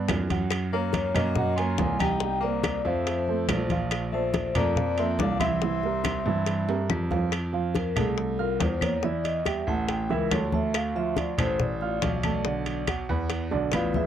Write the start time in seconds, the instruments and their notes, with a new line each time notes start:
Already playing: upright piano B3 B4 D5
0.08 grand piano F#2, high bongo, low bongo, high conga, high timbale, low timbale, claves
0.29 upright piano F#3 F#4 F#5, high bongo, high conga, high timbale
0.51 high bongo, high conga, high timbale, claves
0.72 tenor saxophone A#3, upright piano A#3 A#4 C#5, vibraphone C#5, high conga
0.93 high bongo, high conga, high timbale, low timbale
1.15 grand piano F#2, tenor saxophone A#3, upright piano A#3 A#4 C#5, vibraphone D#5, high conga, low conga, high timbale, claves
1.36 upright piano F#3 F#4 F#5, high bongo, high conga, low conga
1.56 upright piano A#3 A#4 C#5, tenor saxophone F4, vibraphone G#5, high conga, high timbale
1.78 grand piano C2, high bongo, low bongo, high conga, low timbale
1.99 upright piano G3 G4 G5, tenor saxophone D#4, vibraphone G5, high conga, high timbale, claves
2.20 upright piano G3 G4 G5, high bongo, high conga
2.40 tenor saxophone A#3, upright piano A#3 A#4 C5, vibraphone D5, high bongo, high conga
2.63 high bongo, high conga, high timbale, low timbale, claves
2.84 grand piano F2, upright piano F3 F4 F5, tenor saxophone A3, vibraphone C5, high bongo, high conga
3.07 high bongo, high conga, high timbale
3.28 upright piano A3 A4 C5, high conga
3.48 grand piano A#1, high bongo, low bongo, high conga, high timbale, low timbale, claves
3.70 upright piano F3 F4 F5, high bongo, high conga, high timbale
3.91 high bongo, high conga, high timbale, claves
4.12 upright piano F3 A4 D5, tenor saxophone A3, vibraphone C5, high conga
4.34 high bongo, high conga, high timbale, low timbale
4.55 grand piano F2, upright piano A3 A4 A#4, tenor saxophone A#3, vibraphone D5, high conga, low conga, high timbale, claves
4.76 upright piano F3 F4 F5, high bongo, high conga, low conga
4.98 upright piano A#3 A4 A#4, tenor saxophone C4, vibraphone E5, high conga, high timbale
5.19 grand piano C2, tenor saxophone D4, vibraphone F5, high bongo, low bongo, high conga, low timbale
5.40 upright piano E3 E4 E5, tenor saxophone C4, vibraphone E5, high conga, high timbale, claves
5.62 upright piano E3 E4 E5, high bongo, high conga
5.83 upright piano G3 G4 A#4, high bongo, high conga
6.04 high bongo, high conga, high timbale, low timbale, claves
6.26 grand piano G2, upright piano E3 E4 E5, high bongo, high conga
6.46 high bongo, high conga, high timbale
6.68 upright piano G3 G4 A#4, high conga, high timbale
6.89 grand piano F2, high bongo, low bongo, high conga, claves
7.11 upright piano F3 F4 F5, high bongo, high conga, low timbale
7.32 high bongo, high conga, high timbale, claves
7.53 upright piano F3 F4 F5, high conga
7.75 vibraphone A#4, high bongo, high conga, high timbale
7.96 grand piano C2, upright piano A3 A4 A5, vibraphone G#4, high conga, low conga, high timbale, claves
8.18 vibraphone A4, high bongo, high conga
8.39 upright piano F4 F5 F6, vibraphone A#4, high conga
8.60 grand piano E2, vibraphone C5, high bongo, low bongo, high conga, high timbale, low timbale
8.81 upright piano A#3 A#4 A#5, vibraphone C#5, high conga, high timbale, claves
9.03 upright piano E3 E4 E5, vibraphone D5, high bongo, high conga
9.24 vibraphone D#5, high bongo, high conga, high timbale
9.46 upright piano G3 G4 G5, vibraphone E5, high bongo, high conga, high timbale, claves
9.67 grand piano A1, upright piano A3 A4 A5, vibraphone F#5, high conga
9.89 vibraphone G5, high bongo, high conga, high timbale
10.10 grand piano C#2, upright piano E3 E4 E5, vibraphone A#4, high bongo, high conga
10.31 grand piano D2, upright piano A3 A4 A5, vibraphone C#5, high bongo, low bongo, high conga, high timbale, low timbale, claves
10.52 upright piano A3 A4 A5, vibraphone E5, high bongo, high conga
10.74 vibraphone F5, high bongo, high conga, high timbale, claves
10.95 upright piano F3 F4 F5, vibraphone E5, high conga
11.16 vibraphone D5, high bongo, high conga, high timbale
11.38 grand piano A1, upright piano A3 A4 A5, vibraphone C5, high conga, low conga, high timbale, claves
11.60 vibraphone D5, high bongo, high conga, low conga
11.81 upright piano F4 F5 F6, high conga
12.02 grand piano B1, high bongo, low bongo, high conga, high timbale
12.23 upright piano A3 A4 A5, high conga, high timbale, claves
12.45 upright piano D3 D4 D5, high bongo, high conga
12.66 high bongo, high conga, high timbale
12.87 upright piano F#3 F#4 F#5, high bongo, high conga, high timbale, claves
13.09 grand piano E2, upright piano B3 B4 B5, high conga
13.30 high bongo, high conga, high timbale
13.51 grand piano B1, upright piano D3 D4 D5, high bongo, high conga
13.72 grand piano A1, upright piano B3 B4 B5, vibraphone F4 B4 D5 F5, high bongo, low bongo, high conga, high timbale, claves
13.93 upright piano E3 E4 E5, vibraphone E4 G#4 B4 E5, high bongo, high conga